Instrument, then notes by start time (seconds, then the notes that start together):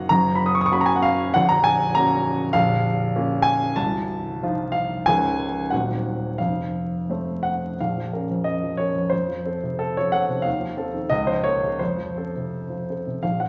grand piano
Already playing: F#1 F#2 A#3 D#4 F#4 D#5 F5 F#5
0.09 F#1 F#2 A#5
0.35 B5
0.46 D#6
0.55 C#6
0.61 D#6
0.66 C#6
0.71 A#3 C#4 F#4 B5
0.81 A#5
0.86 G#5
0.96 F#5
1.02 F5
1.34 A#0 A#1 F#5
1.49 A#5
1.64 G#5
1.95 A#3 C#4 F#4 A#5
2.53 A#0 A#1 F5
3.16 A#3 C#4 F4
3.42 G#5
3.76 C1 C2 A5
4.43 F3 D#4 F4
4.72 F5
5.06 C#1 C#2 F3 C#4 A#4 G#5
5.70 D#1 D#2 F#3 C4 C5 F#5
6.38 F1 F2 F5
7.09 A3 C4 C5
7.43 F#5
7.80 A#1 F5
7.98 F3
8.13 C#4 A#4
8.31 F2
8.44 D#5
8.63 F3
8.77 C#4 A#4 C#5
8.95 F2
9.10 F2 C5
9.28 F3
9.46 C4 A4
9.63 C3
9.79 A4
9.97 F3 C#5
10.12 C4 A4 F#5
10.29 C3
10.42 D#2 F5
10.60 F3
10.77 C4 A4
10.94 D#3
11.10 C#2 D#5
11.27 F3 C5
11.44 A#3 A#4 C#5
11.63 C#3
11.79 F2 C5
11.98 F3
12.18 C4 A4
12.36 C3
12.70 F3
12.90 C4 A4
13.07 C3
13.23 A#1 F5
13.40 F3 F#5